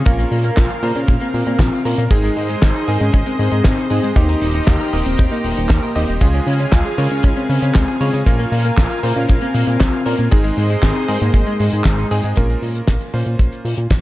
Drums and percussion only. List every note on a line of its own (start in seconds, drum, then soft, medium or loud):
0.06 kick loud
0.06 closed hi-hat loud
0.19 closed hi-hat medium
0.32 open hi-hat medium
0.44 closed hi-hat medium
0.57 kick loud
0.57 snare loud
0.57 clap medium
0.57 closed hi-hat medium
0.70 closed hi-hat medium
0.83 open hi-hat loud
0.95 closed hi-hat medium
1.08 kick loud
1.08 closed hi-hat loud
1.21 closed hi-hat medium
1.34 open hi-hat loud
1.47 closed hi-hat medium
1.59 kick loud
1.59 snare loud
1.59 clap medium
1.59 closed hi-hat medium
1.73 closed hi-hat medium
1.85 open hi-hat loud
1.98 closed hi-hat medium
2.11 kick loud
2.11 closed hi-hat medium
2.25 closed hi-hat medium
2.37 open hi-hat medium
2.50 closed hi-hat medium
2.62 kick loud
2.62 snare loud
2.62 clap medium
2.62 closed hi-hat medium
2.74 closed hi-hat medium
2.87 open hi-hat medium
3.00 closed hi-hat soft
3.13 kick loud
3.13 closed hi-hat medium
3.26 closed hi-hat medium
3.39 open hi-hat loud
3.51 closed hi-hat medium
3.64 kick loud
3.64 snare loud
3.64 clap medium
3.64 closed hi-hat medium
3.78 closed hi-hat medium
3.91 open hi-hat loud
4.03 closed hi-hat soft
4.16 kick loud
4.16 closed hi-hat loud
4.16 tambourine medium
4.29 closed hi-hat soft
4.29 tambourine soft
4.41 open hi-hat loud
4.54 closed hi-hat soft
4.54 tambourine medium
4.67 kick loud
4.67 snare loud
4.67 clap medium
4.67 closed hi-hat medium
4.67 tambourine medium
4.80 closed hi-hat medium
4.80 tambourine soft
4.93 open hi-hat loud
5.05 closed hi-hat medium
5.05 tambourine medium
5.18 kick loud
5.18 closed hi-hat medium
5.32 closed hi-hat medium
5.32 tambourine soft
5.44 open hi-hat loud
5.56 closed hi-hat medium
5.56 tambourine medium
5.69 kick loud
5.69 snare loud
5.69 clap medium
5.69 closed hi-hat loud
5.69 tambourine medium
5.82 closed hi-hat medium
5.82 tambourine soft
5.95 open hi-hat loud
6.08 closed hi-hat medium
6.08 tambourine medium
6.21 kick loud
6.21 closed hi-hat loud
6.21 tambourine medium
6.34 closed hi-hat medium
6.34 tambourine soft
6.48 open hi-hat loud
6.59 closed hi-hat medium
6.59 tambourine medium
6.72 kick loud
6.72 snare loud
6.72 clap medium
6.72 closed hi-hat loud
6.72 tambourine soft
6.85 closed hi-hat medium
6.85 tambourine soft
6.98 open hi-hat loud
7.11 closed hi-hat medium
7.11 tambourine medium
7.23 kick loud
7.23 closed hi-hat loud
7.23 tambourine soft
7.37 closed hi-hat medium
7.37 tambourine soft
7.50 open hi-hat loud
7.62 closed hi-hat medium
7.62 tambourine medium
7.74 kick loud
7.74 snare loud
7.74 clap medium
7.74 closed hi-hat loud
7.74 tambourine medium
7.88 closed hi-hat medium
7.88 tambourine soft
8.01 open hi-hat loud
8.13 closed hi-hat medium
8.13 tambourine medium
8.26 kick loud
8.26 closed hi-hat loud
8.26 tambourine soft
8.39 closed hi-hat medium
8.39 tambourine soft
8.52 open hi-hat loud
8.65 closed hi-hat medium
8.65 tambourine medium
8.78 kick loud
8.78 snare loud
8.78 clap medium
8.78 closed hi-hat loud
8.91 closed hi-hat medium
8.91 tambourine soft
9.03 open hi-hat loud
9.15 closed hi-hat medium
9.15 tambourine medium
9.28 kick loud
9.28 closed hi-hat loud
9.28 tambourine medium
9.41 closed hi-hat medium
9.41 tambourine soft
9.54 open hi-hat loud
9.67 closed hi-hat medium
9.67 tambourine medium
9.80 kick loud
9.80 snare loud
9.80 clap medium
9.80 closed hi-hat loud
9.80 tambourine soft
9.93 closed hi-hat medium
9.93 tambourine soft
10.06 open hi-hat loud
10.18 closed hi-hat medium
10.18 tambourine medium
10.31 kick loud
10.31 closed hi-hat loud
10.31 tambourine soft
10.45 open hi-hat medium
10.45 tambourine soft
10.57 open hi-hat loud
10.69 closed hi-hat medium
10.69 tambourine medium
10.83 kick loud
10.83 snare loud
10.83 clap medium
10.83 closed hi-hat loud
10.83 tambourine soft
10.95 closed hi-hat medium
10.95 tambourine soft
11.08 open hi-hat loud
11.21 closed hi-hat medium
11.21 tambourine medium
11.34 kick loud
11.34 closed hi-hat loud
11.34 tambourine medium
11.46 closed hi-hat medium
11.46 tambourine soft
11.60 open hi-hat loud
11.73 closed hi-hat medium
11.73 tambourine medium
11.84 kick loud
11.84 snare loud
11.84 clap loud
11.84 closed hi-hat loud
11.98 closed hi-hat medium
11.98 tambourine soft
12.11 open hi-hat loud
12.23 closed hi-hat medium
12.23 tambourine medium
12.36 kick loud
12.36 closed hi-hat medium
12.50 closed hi-hat medium
12.62 open hi-hat medium
12.75 closed hi-hat medium
12.87 kick loud
12.87 snare loud
12.87 closed hi-hat medium
13.01 closed hi-hat medium
13.13 open hi-hat loud
13.26 closed hi-hat medium
13.39 kick loud
13.39 closed hi-hat loud
13.52 closed hi-hat medium
13.65 open hi-hat loud
13.78 closed hi-hat medium
13.90 kick loud
13.90 snare loud
13.90 closed hi-hat medium